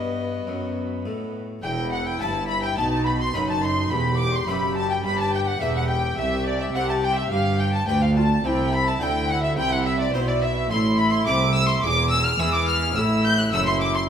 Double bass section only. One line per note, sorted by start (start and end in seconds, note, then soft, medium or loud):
1.64 2.17 E1 medium
2.21 2.77 G1 medium
2.77 3.34 B1 medium
3.34 3.91 F#1 medium
3.91 4.47 E1 medium
4.48 5.04 F#1 medium
5.04 5.60 G1 medium
5.61 6.17 E1 medium
6.18 6.74 C2 medium
6.75 7.30 C2 medium
7.31 7.87 G1 medium
7.88 8.43 D2 medium
8.44 8.99 C2 medium
9.01 9.56 D2 medium
9.57 10.14 C2 medium
10.14 10.69 B1 medium
10.71 11.27 A1 medium
11.27 11.82 C2 medium
11.83 12.38 E1 medium
12.40 12.95 E2 medium
12.96 13.53 A1 medium
13.53 14.09 F#1 medium